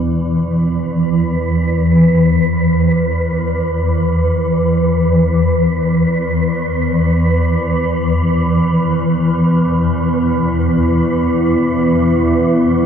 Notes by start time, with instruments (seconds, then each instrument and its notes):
Already playing: synth drone E3, ambient pad E4 D5
0.07 synth drone E2, synth texture B4
0.11 synth drone E3
7.37 ambient pad B3
8.24 ambient pad E4
8.97 ambient pad B4
10.14 ambient pad E5